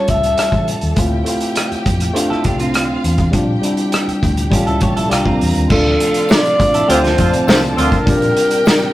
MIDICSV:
0, 0, Header, 1, 10, 480
1, 0, Start_track
1, 0, Key_signature, -1, "minor"
1, 0, Tempo, 591716
1, 787, Time_signature, 4, 2, 24, 8
1, 7245, End_track
2, 0, Start_track
2, 0, Title_t, "Violin section"
2, 0, Program_c, 0, 48
2, 0, Note_on_c, 0, 69, 67
2, 0, Note_on_c, 0, 81, 70
2, 766, Note_off_c, 0, 69, 0
2, 766, Note_off_c, 0, 81, 0
2, 788, Note_on_c, 0, 79, 81
2, 789, Note_on_c, 0, 67, 75
2, 1965, Note_off_c, 0, 67, 0
2, 1965, Note_off_c, 0, 79, 0
2, 1985, Note_on_c, 0, 65, 82
2, 1985, Note_on_c, 0, 77, 83
2, 2693, Note_off_c, 0, 65, 0
2, 2693, Note_off_c, 0, 77, 0
2, 2703, Note_on_c, 0, 67, 68
2, 2708, Note_on_c, 0, 79, 76
2, 3647, Note_off_c, 0, 67, 0
2, 3649, Note_off_c, 0, 79, 0
2, 3661, Note_on_c, 0, 69, 71
2, 3661, Note_on_c, 0, 81, 70
2, 4135, Note_off_c, 0, 69, 0
2, 4135, Note_off_c, 0, 81, 0
2, 4142, Note_on_c, 0, 70, 75
2, 4146, Note_on_c, 0, 82, 82
2, 4616, Note_off_c, 0, 70, 0
2, 4618, Note_off_c, 0, 82, 0
2, 4621, Note_on_c, 0, 77, 89
2, 4625, Note_on_c, 0, 65, 76
2, 5566, Note_off_c, 0, 77, 0
2, 5568, Note_off_c, 0, 65, 0
2, 5591, Note_on_c, 0, 81, 81
2, 5595, Note_on_c, 0, 69, 64
2, 6530, Note_off_c, 0, 81, 0
2, 6533, Note_off_c, 0, 69, 0
2, 6557, Note_on_c, 0, 67, 76
2, 6558, Note_on_c, 0, 79, 96
2, 7245, Note_off_c, 0, 67, 0
2, 7245, Note_off_c, 0, 79, 0
2, 7245, End_track
3, 0, Start_track
3, 0, Title_t, "Alto saxophone"
3, 0, Program_c, 1, 65
3, 0, Note_on_c, 1, 73, 93
3, 79, Note_on_c, 1, 76, 115
3, 91, Note_off_c, 1, 73, 0
3, 553, Note_off_c, 1, 76, 0
3, 4639, Note_on_c, 1, 69, 93
3, 5121, Note_on_c, 1, 74, 112
3, 5133, Note_off_c, 1, 69, 0
3, 5603, Note_on_c, 1, 72, 103
3, 5615, Note_off_c, 1, 74, 0
3, 6076, Note_off_c, 1, 72, 0
3, 6081, Note_on_c, 1, 72, 83
3, 6187, Note_off_c, 1, 72, 0
3, 6328, Note_on_c, 1, 70, 94
3, 7245, Note_off_c, 1, 70, 0
3, 7245, End_track
4, 0, Start_track
4, 0, Title_t, "Clean electric guitar"
4, 0, Program_c, 2, 27
4, 1743, Note_on_c, 2, 72, 66
4, 1748, Note_on_c, 2, 67, 53
4, 1859, Note_off_c, 2, 72, 0
4, 1862, Note_off_c, 2, 67, 0
4, 1867, Note_on_c, 2, 69, 63
4, 1872, Note_on_c, 2, 64, 55
4, 1981, Note_off_c, 2, 69, 0
4, 1984, Note_off_c, 2, 64, 0
4, 1992, Note_on_c, 2, 62, 64
4, 1993, Note_on_c, 2, 67, 65
4, 2103, Note_off_c, 2, 67, 0
4, 2104, Note_off_c, 2, 62, 0
4, 2109, Note_on_c, 2, 65, 64
4, 2114, Note_on_c, 2, 60, 53
4, 2679, Note_off_c, 2, 65, 0
4, 2681, Note_off_c, 2, 60, 0
4, 3671, Note_on_c, 2, 67, 62
4, 3674, Note_on_c, 2, 61, 53
4, 3784, Note_off_c, 2, 67, 0
4, 3786, Note_off_c, 2, 61, 0
4, 3788, Note_on_c, 2, 69, 61
4, 3793, Note_on_c, 2, 64, 53
4, 3903, Note_off_c, 2, 69, 0
4, 3905, Note_off_c, 2, 64, 0
4, 3916, Note_on_c, 2, 67, 56
4, 3917, Note_on_c, 2, 73, 63
4, 4025, Note_off_c, 2, 73, 0
4, 4027, Note_off_c, 2, 67, 0
4, 4028, Note_on_c, 2, 69, 65
4, 4034, Note_on_c, 2, 64, 60
4, 4143, Note_off_c, 2, 69, 0
4, 4146, Note_off_c, 2, 64, 0
4, 4148, Note_on_c, 2, 67, 65
4, 4155, Note_on_c, 2, 62, 52
4, 4263, Note_off_c, 2, 62, 0
4, 4263, Note_off_c, 2, 67, 0
4, 4266, Note_on_c, 2, 65, 63
4, 4272, Note_on_c, 2, 60, 51
4, 4610, Note_off_c, 2, 65, 0
4, 4613, Note_off_c, 2, 60, 0
4, 5470, Note_on_c, 2, 69, 76
4, 5474, Note_on_c, 2, 64, 64
4, 5582, Note_off_c, 2, 69, 0
4, 5585, Note_off_c, 2, 64, 0
4, 5585, Note_on_c, 2, 67, 77
4, 5590, Note_on_c, 2, 62, 60
4, 5701, Note_off_c, 2, 67, 0
4, 5702, Note_off_c, 2, 62, 0
4, 5705, Note_on_c, 2, 65, 67
4, 5710, Note_on_c, 2, 60, 56
4, 6394, Note_off_c, 2, 65, 0
4, 6397, Note_off_c, 2, 60, 0
4, 7245, End_track
5, 0, Start_track
5, 0, Title_t, "Tine electric piano"
5, 0, Program_c, 3, 4
5, 0, Control_c, 3, 64, 127
5, 0, Note_on_c, 3, 55, 71
5, 0, Note_on_c, 3, 58, 66
5, 0, Note_on_c, 3, 61, 62
5, 0, Note_on_c, 3, 65, 75
5, 449, Note_off_c, 3, 55, 0
5, 454, Note_off_c, 3, 58, 0
5, 459, Note_off_c, 3, 61, 0
5, 463, Note_off_c, 3, 65, 0
5, 775, Note_on_c, 3, 57, 80
5, 782, Note_on_c, 3, 60, 72
5, 792, Note_on_c, 3, 64, 74
5, 799, Control_c, 3, 64, 0
5, 802, Note_on_c, 3, 65, 87
5, 921, Control_c, 3, 64, 127
5, 938, Note_off_c, 3, 57, 0
5, 942, Note_off_c, 3, 60, 0
5, 947, Note_off_c, 3, 64, 0
5, 952, Note_off_c, 3, 65, 0
5, 1011, Note_on_c, 3, 57, 76
5, 1020, Note_on_c, 3, 60, 68
5, 1031, Note_on_c, 3, 64, 62
5, 1038, Note_on_c, 3, 65, 75
5, 1491, Note_off_c, 3, 57, 0
5, 1496, Note_off_c, 3, 60, 0
5, 1501, Note_off_c, 3, 64, 0
5, 1505, Note_off_c, 3, 65, 0
5, 1730, Note_on_c, 3, 57, 92
5, 1738, Note_on_c, 3, 60, 75
5, 1748, Note_on_c, 3, 62, 78
5, 1756, Note_on_c, 3, 65, 92
5, 2368, Note_off_c, 3, 57, 0
5, 2373, Note_off_c, 3, 60, 0
5, 2378, Note_off_c, 3, 62, 0
5, 2382, Note_off_c, 3, 65, 0
5, 2689, Note_on_c, 3, 55, 82
5, 2697, Note_on_c, 3, 60, 74
5, 2707, Note_on_c, 3, 62, 74
5, 2715, Note_on_c, 3, 65, 81
5, 2718, Control_c, 3, 64, 0
5, 2856, Note_off_c, 3, 55, 0
5, 2860, Note_off_c, 3, 60, 0
5, 2865, Note_off_c, 3, 62, 0
5, 2869, Note_off_c, 3, 65, 0
5, 2881, Control_c, 3, 64, 127
5, 2933, Note_on_c, 3, 55, 72
5, 2941, Note_on_c, 3, 60, 63
5, 2952, Note_on_c, 3, 62, 66
5, 2963, Note_on_c, 3, 64, 76
5, 3413, Note_off_c, 3, 55, 0
5, 3417, Note_off_c, 3, 60, 0
5, 3423, Note_off_c, 3, 62, 0
5, 3428, Note_off_c, 3, 64, 0
5, 3656, Note_on_c, 3, 55, 86
5, 3663, Note_on_c, 3, 58, 79
5, 3672, Note_on_c, 3, 61, 82
5, 3678, Control_c, 3, 64, 0
5, 3681, Note_on_c, 3, 65, 92
5, 3825, Control_c, 3, 64, 127
5, 4121, Note_off_c, 3, 55, 0
5, 4129, Note_off_c, 3, 58, 0
5, 4130, Note_on_c, 3, 55, 84
5, 4139, Note_on_c, 3, 58, 78
5, 4148, Note_on_c, 3, 62, 77
5, 4149, Note_off_c, 3, 65, 0
5, 4151, Note_off_c, 3, 61, 0
5, 4159, Note_on_c, 3, 65, 98
5, 4160, Control_c, 3, 64, 0
5, 4283, Control_c, 3, 64, 127
5, 4524, Note_off_c, 3, 55, 0
5, 4528, Note_off_c, 3, 58, 0
5, 4532, Note_off_c, 3, 62, 0
5, 4538, Note_off_c, 3, 65, 0
5, 4616, Note_on_c, 3, 57, 65
5, 4626, Note_on_c, 3, 60, 71
5, 4634, Note_on_c, 3, 62, 61
5, 4641, Control_c, 3, 64, 0
5, 4644, Note_on_c, 3, 65, 80
5, 4796, Control_c, 3, 64, 127
5, 5251, Note_off_c, 3, 57, 0
5, 5257, Note_off_c, 3, 60, 0
5, 5261, Note_off_c, 3, 62, 0
5, 5265, Note_off_c, 3, 65, 0
5, 5575, Note_on_c, 3, 57, 84
5, 5584, Note_on_c, 3, 60, 75
5, 5592, Note_on_c, 3, 76, 74
5, 5602, Note_on_c, 3, 65, 83
5, 6211, Note_off_c, 3, 57, 0
5, 6215, Note_off_c, 3, 60, 0
5, 6219, Note_off_c, 3, 76, 0
5, 6224, Note_off_c, 3, 65, 0
5, 6530, Note_on_c, 3, 60, 72
5, 6539, Note_on_c, 3, 62, 66
5, 6548, Note_on_c, 3, 65, 65
5, 6557, Control_c, 3, 64, 0
5, 6559, Note_on_c, 3, 67, 83
5, 6717, Control_c, 3, 64, 127
5, 7168, Note_off_c, 3, 60, 0
5, 7173, Note_off_c, 3, 62, 0
5, 7177, Note_off_c, 3, 65, 0
5, 7183, Note_off_c, 3, 67, 0
5, 7245, End_track
6, 0, Start_track
6, 0, Title_t, "Horn section"
6, 0, Program_c, 4, 61
6, 5586, Note_on_c, 4, 60, 80
6, 5586, Note_on_c, 4, 65, 92
6, 5587, Note_on_c, 4, 50, 87
6, 5663, Note_off_c, 4, 60, 0
6, 5663, Note_off_c, 4, 65, 0
6, 5664, Note_off_c, 4, 50, 0
6, 5826, Note_on_c, 4, 50, 69
6, 5827, Note_on_c, 4, 65, 79
6, 5828, Note_on_c, 4, 60, 65
6, 5929, Note_off_c, 4, 50, 0
6, 5930, Note_off_c, 4, 60, 0
6, 5930, Note_off_c, 4, 65, 0
6, 6062, Note_on_c, 4, 65, 83
6, 6063, Note_on_c, 4, 50, 66
6, 6064, Note_on_c, 4, 60, 75
6, 6167, Note_off_c, 4, 50, 0
6, 6167, Note_off_c, 4, 65, 0
6, 6168, Note_off_c, 4, 60, 0
6, 6305, Note_on_c, 4, 50, 85
6, 6305, Note_on_c, 4, 60, 78
6, 6305, Note_on_c, 4, 65, 91
6, 6459, Note_off_c, 4, 50, 0
6, 6459, Note_off_c, 4, 60, 0
6, 6459, Note_off_c, 4, 65, 0
6, 7245, End_track
7, 0, Start_track
7, 0, Title_t, "Tonewheel organ"
7, 0, Program_c, 5, 16
7, 4624, Note_on_c, 5, 48, 66
7, 4624, Note_on_c, 5, 62, 76
7, 4625, Note_on_c, 5, 53, 61
7, 6527, Note_off_c, 5, 53, 0
7, 6551, Note_on_c, 5, 55, 62
7, 7245, Note_off_c, 5, 48, 0
7, 7245, Note_off_c, 5, 55, 0
7, 7245, Note_off_c, 5, 62, 0
7, 7245, End_track
8, 0, Start_track
8, 0, Title_t, "Fingered electric bass"
8, 0, Program_c, 6, 33
8, 71, Note_on_c, 6, 37, 76
8, 261, Note_off_c, 6, 37, 0
8, 424, Note_on_c, 6, 33, 73
8, 521, Note_off_c, 6, 33, 0
8, 666, Note_on_c, 6, 39, 75
8, 762, Note_off_c, 6, 39, 0
8, 786, Note_on_c, 6, 38, 87
8, 978, Note_off_c, 6, 38, 0
8, 1508, Note_on_c, 6, 41, 84
8, 1700, Note_off_c, 6, 41, 0
8, 1988, Note_on_c, 6, 36, 82
8, 2371, Note_off_c, 6, 36, 0
8, 2467, Note_on_c, 6, 40, 86
8, 2659, Note_off_c, 6, 40, 0
8, 2705, Note_on_c, 6, 34, 95
8, 2898, Note_off_c, 6, 34, 0
8, 3429, Note_on_c, 6, 38, 90
8, 3621, Note_off_c, 6, 38, 0
8, 3664, Note_on_c, 6, 33, 99
8, 3762, Note_off_c, 6, 33, 0
8, 3788, Note_on_c, 6, 37, 89
8, 3884, Note_off_c, 6, 37, 0
8, 3909, Note_on_c, 6, 33, 81
8, 4005, Note_off_c, 6, 33, 0
8, 4036, Note_on_c, 6, 34, 88
8, 4129, Note_off_c, 6, 34, 0
8, 4154, Note_on_c, 6, 36, 99
8, 4248, Note_off_c, 6, 36, 0
8, 4265, Note_on_c, 6, 36, 67
8, 4363, Note_off_c, 6, 36, 0
8, 4391, Note_on_c, 6, 40, 84
8, 4486, Note_off_c, 6, 40, 0
8, 4510, Note_on_c, 6, 39, 72
8, 4605, Note_off_c, 6, 39, 0
8, 4628, Note_on_c, 6, 38, 101
8, 4820, Note_off_c, 6, 38, 0
8, 5590, Note_on_c, 6, 38, 94
8, 5781, Note_off_c, 6, 38, 0
8, 5831, Note_on_c, 6, 41, 80
8, 5926, Note_off_c, 6, 41, 0
8, 6064, Note_on_c, 6, 36, 100
8, 6257, Note_off_c, 6, 36, 0
8, 6307, Note_on_c, 6, 38, 91
8, 6403, Note_off_c, 6, 38, 0
8, 6547, Note_on_c, 6, 34, 101
8, 6739, Note_off_c, 6, 34, 0
8, 7245, End_track
9, 0, Start_track
9, 0, Title_t, "Muted fingered electric bass strokes"
9, 310, Note_on_c, 9, 29, 45
9, 391, Note_off_c, 9, 29, 0
9, 1392, Note_on_c, 9, 29, 42
9, 1473, Note_off_c, 9, 29, 0
9, 1871, Note_on_c, 9, 29, 42
9, 1952, Note_off_c, 9, 29, 0
9, 3307, Note_on_c, 9, 29, 42
9, 3388, Note_off_c, 9, 29, 0
9, 7245, End_track
10, 0, Start_track
10, 0, Title_t, "Drums"
10, 62, Note_on_c, 9, 42, 57
10, 69, Note_on_c, 9, 36, 78
10, 143, Note_off_c, 9, 42, 0
10, 151, Note_off_c, 9, 36, 0
10, 190, Note_on_c, 9, 42, 47
10, 271, Note_off_c, 9, 42, 0
10, 305, Note_on_c, 9, 42, 83
10, 317, Note_on_c, 9, 37, 93
10, 386, Note_off_c, 9, 42, 0
10, 398, Note_off_c, 9, 37, 0
10, 423, Note_on_c, 9, 36, 82
10, 423, Note_on_c, 9, 42, 29
10, 504, Note_off_c, 9, 36, 0
10, 504, Note_off_c, 9, 42, 0
10, 549, Note_on_c, 9, 42, 61
10, 631, Note_off_c, 9, 42, 0
10, 659, Note_on_c, 9, 42, 40
10, 740, Note_off_c, 9, 42, 0
10, 781, Note_on_c, 9, 42, 73
10, 785, Note_on_c, 9, 36, 92
10, 862, Note_off_c, 9, 42, 0
10, 866, Note_off_c, 9, 36, 0
10, 1023, Note_on_c, 9, 42, 64
10, 1105, Note_off_c, 9, 42, 0
10, 1139, Note_on_c, 9, 42, 48
10, 1220, Note_off_c, 9, 42, 0
10, 1261, Note_on_c, 9, 42, 93
10, 1276, Note_on_c, 9, 37, 97
10, 1342, Note_off_c, 9, 42, 0
10, 1357, Note_off_c, 9, 37, 0
10, 1392, Note_on_c, 9, 42, 33
10, 1473, Note_off_c, 9, 42, 0
10, 1507, Note_on_c, 9, 42, 78
10, 1509, Note_on_c, 9, 36, 97
10, 1588, Note_off_c, 9, 42, 0
10, 1590, Note_off_c, 9, 36, 0
10, 1624, Note_on_c, 9, 42, 57
10, 1639, Note_on_c, 9, 37, 34
10, 1705, Note_off_c, 9, 42, 0
10, 1720, Note_off_c, 9, 37, 0
10, 1753, Note_on_c, 9, 42, 90
10, 1834, Note_off_c, 9, 42, 0
10, 1881, Note_on_c, 9, 37, 31
10, 1962, Note_off_c, 9, 37, 0
10, 1979, Note_on_c, 9, 42, 55
10, 1987, Note_on_c, 9, 36, 75
10, 2061, Note_off_c, 9, 42, 0
10, 2068, Note_off_c, 9, 36, 0
10, 2105, Note_on_c, 9, 42, 43
10, 2186, Note_off_c, 9, 42, 0
10, 2223, Note_on_c, 9, 42, 83
10, 2234, Note_on_c, 9, 37, 102
10, 2304, Note_off_c, 9, 42, 0
10, 2315, Note_off_c, 9, 37, 0
10, 2468, Note_on_c, 9, 42, 63
10, 2549, Note_off_c, 9, 42, 0
10, 2577, Note_on_c, 9, 42, 38
10, 2582, Note_on_c, 9, 36, 73
10, 2658, Note_off_c, 9, 42, 0
10, 2663, Note_off_c, 9, 36, 0
10, 2702, Note_on_c, 9, 42, 80
10, 2705, Note_on_c, 9, 36, 85
10, 2783, Note_off_c, 9, 42, 0
10, 2786, Note_off_c, 9, 36, 0
10, 2947, Note_on_c, 9, 42, 69
10, 3028, Note_off_c, 9, 42, 0
10, 3059, Note_on_c, 9, 42, 45
10, 3140, Note_off_c, 9, 42, 0
10, 3181, Note_on_c, 9, 42, 91
10, 3196, Note_on_c, 9, 37, 101
10, 3262, Note_off_c, 9, 42, 0
10, 3277, Note_off_c, 9, 37, 0
10, 3315, Note_on_c, 9, 42, 35
10, 3396, Note_off_c, 9, 42, 0
10, 3430, Note_on_c, 9, 36, 86
10, 3431, Note_on_c, 9, 42, 73
10, 3511, Note_off_c, 9, 36, 0
10, 3512, Note_off_c, 9, 42, 0
10, 3547, Note_on_c, 9, 42, 55
10, 3628, Note_off_c, 9, 42, 0
10, 3663, Note_on_c, 9, 36, 92
10, 3674, Note_on_c, 9, 42, 107
10, 3744, Note_off_c, 9, 36, 0
10, 3755, Note_off_c, 9, 42, 0
10, 3788, Note_on_c, 9, 42, 29
10, 3869, Note_off_c, 9, 42, 0
10, 3898, Note_on_c, 9, 42, 60
10, 3907, Note_on_c, 9, 36, 85
10, 3979, Note_off_c, 9, 42, 0
10, 3989, Note_off_c, 9, 36, 0
10, 4030, Note_on_c, 9, 42, 46
10, 4111, Note_off_c, 9, 42, 0
10, 4148, Note_on_c, 9, 42, 83
10, 4160, Note_on_c, 9, 37, 97
10, 4229, Note_off_c, 9, 42, 0
10, 4241, Note_off_c, 9, 37, 0
10, 4263, Note_on_c, 9, 36, 82
10, 4344, Note_off_c, 9, 36, 0
10, 4391, Note_on_c, 9, 46, 64
10, 4472, Note_off_c, 9, 46, 0
10, 4499, Note_on_c, 9, 42, 41
10, 4581, Note_off_c, 9, 42, 0
10, 4623, Note_on_c, 9, 49, 100
10, 4626, Note_on_c, 9, 36, 101
10, 4705, Note_off_c, 9, 49, 0
10, 4707, Note_off_c, 9, 36, 0
10, 4870, Note_on_c, 9, 42, 70
10, 4951, Note_off_c, 9, 42, 0
10, 4983, Note_on_c, 9, 42, 52
10, 5064, Note_off_c, 9, 42, 0
10, 5100, Note_on_c, 9, 54, 81
10, 5119, Note_on_c, 9, 38, 119
10, 5181, Note_off_c, 9, 54, 0
10, 5200, Note_off_c, 9, 38, 0
10, 5233, Note_on_c, 9, 42, 37
10, 5314, Note_off_c, 9, 42, 0
10, 5351, Note_on_c, 9, 42, 89
10, 5352, Note_on_c, 9, 36, 102
10, 5432, Note_off_c, 9, 42, 0
10, 5433, Note_off_c, 9, 36, 0
10, 5468, Note_on_c, 9, 42, 58
10, 5549, Note_off_c, 9, 42, 0
10, 5594, Note_on_c, 9, 42, 112
10, 5675, Note_off_c, 9, 42, 0
10, 5712, Note_on_c, 9, 42, 34
10, 5724, Note_on_c, 9, 38, 29
10, 5793, Note_off_c, 9, 42, 0
10, 5805, Note_off_c, 9, 38, 0
10, 5824, Note_on_c, 9, 42, 66
10, 5830, Note_on_c, 9, 36, 85
10, 5906, Note_off_c, 9, 42, 0
10, 5911, Note_off_c, 9, 36, 0
10, 5949, Note_on_c, 9, 42, 50
10, 6030, Note_off_c, 9, 42, 0
10, 6069, Note_on_c, 9, 54, 96
10, 6076, Note_on_c, 9, 38, 110
10, 6150, Note_off_c, 9, 54, 0
10, 6157, Note_off_c, 9, 38, 0
10, 6189, Note_on_c, 9, 42, 34
10, 6270, Note_off_c, 9, 42, 0
10, 6313, Note_on_c, 9, 42, 67
10, 6394, Note_off_c, 9, 42, 0
10, 6423, Note_on_c, 9, 42, 44
10, 6425, Note_on_c, 9, 36, 81
10, 6504, Note_off_c, 9, 42, 0
10, 6506, Note_off_c, 9, 36, 0
10, 6545, Note_on_c, 9, 42, 80
10, 6546, Note_on_c, 9, 36, 96
10, 6626, Note_off_c, 9, 42, 0
10, 6627, Note_off_c, 9, 36, 0
10, 6667, Note_on_c, 9, 42, 38
10, 6748, Note_off_c, 9, 42, 0
10, 6786, Note_on_c, 9, 42, 74
10, 6867, Note_off_c, 9, 42, 0
10, 6900, Note_on_c, 9, 42, 53
10, 6981, Note_off_c, 9, 42, 0
10, 7021, Note_on_c, 9, 54, 82
10, 7034, Note_on_c, 9, 38, 118
10, 7102, Note_off_c, 9, 54, 0
10, 7115, Note_off_c, 9, 38, 0
10, 7245, End_track
0, 0, End_of_file